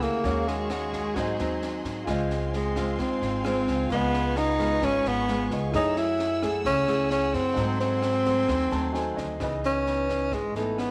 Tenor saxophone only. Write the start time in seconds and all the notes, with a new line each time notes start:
0.02 A#3
0.48 G#3
2.56 G#3
2.99 C4
3.47 C4
3.91 B3
4.37 D#4
4.84 C#4
5.08 B3
5.75 D#4
5.98 E4
6.66 C#4
7.12 C#4
7.34 C4
7.80 C4
9.66 C#4
10.34 G#3
10.56 A3
10.79 B3